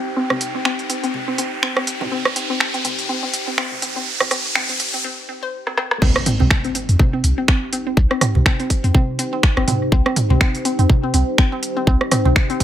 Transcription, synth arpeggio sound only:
0.17 C4
0.30 C4
0.55 C4
0.65 C4
0.90 C4
1.03 C4
1.28 C4
1.38 C4
1.63 C4
1.77 C4
2.01 C4
2.12 C4
2.36 C4
2.50 C4
2.74 C4
2.85 C4
3.09 C4
3.23 C4
3.47 C4
3.58 C4
3.82 C4
3.96 C4
4.20 C4
4.31 C4
4.55 C4
4.69 C4
4.94 C4
5.04 C4
5.29 C4
5.43 C5
5.67 C4
5.78 C4
6.02 C4
6.26 C4
6.40 C4
6.65 C4
6.75 C4
7.00 C4
7.13 C4
7.38 C4
7.48 C4
7.73 C4
7.87 C4
8.11 C4
8.21 C4
8.46 C4
8.60 C4
8.84 C4
8.94 C4
9.19 C4
9.33 C4
9.57 C4
9.68 C4
9.92 C4
10.06 C4
10.30 C4
10.41 C4
10.65 C4
10.79 C4
11.03 C4
11.14 C4
11.38 C4
11.52 C4
11.77 C4
11.87 C4
12.12 C4
12.25 C4
12.50 C4
12.60 C4

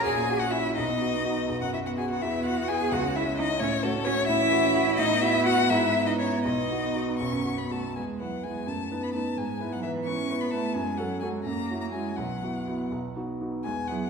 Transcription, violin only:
0.04 G#5
0.40 F#5
0.51 E5
0.76 D#5
1.62 F#5
1.74 E5
1.86 F#5
1.98 G#5
2.10 F#5
2.22 E5
2.46 F#5
2.68 G#5
2.91 F#5
3.16 E5
3.38 D#5
3.60 C#5
3.83 A4
4.05 C#5
4.28 E5
4.96 D#5
5.21 E5
5.46 F#5
5.70 E5
6.06 D#5
6.19 C#5
6.44 D#5
7.19 C#6
7.58 B5
7.71 A5
7.96 G#5
8.19 F#5
8.43 G#5
8.68 A5
9.03 B5
9.14 A5
9.37 G#5
9.72 F#5
9.83 E5
10.05 C#6
10.40 B5
10.51 A5
10.74 G#5
10.97 F#5
11.20 G#5
11.44 A#5
11.81 A#5
11.92 G#5
12.16 F#5
13.64 G#5
13.88 F#5

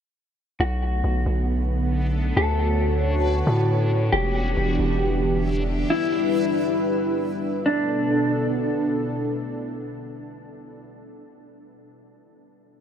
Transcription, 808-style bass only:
0.60 B1
1.04 B1
1.26 B1
2.37 D2
3.47 A2
4.13 E1
4.57 E1
4.79 E1

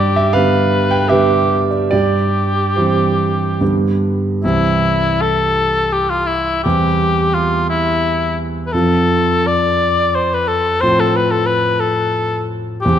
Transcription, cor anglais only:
Already playing: G4
0.34 B4
1.08 G4
1.91 G4
4.43 E4
5.21 A4
5.92 G4
6.10 F4
6.26 E4
6.63 G4
7.34 F4
7.69 E4
8.66 B4
8.72 A4
9.47 D5
10.15 C5
10.34 B4
10.48 A4
10.81 C5
11.00 A4
11.16 B4
11.31 A4
11.46 B4
11.80 A4
12.81 G4

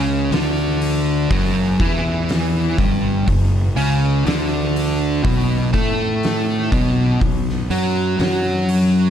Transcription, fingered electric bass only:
Already playing: C#2
0.31 D2
1.30 F#1
1.80 E2
2.78 G1
3.28 F#1
3.77 C#2
4.26 D2
5.25 B1
5.74 A2
6.72 B1
7.21 B1
7.70 F#2
8.19 F#2

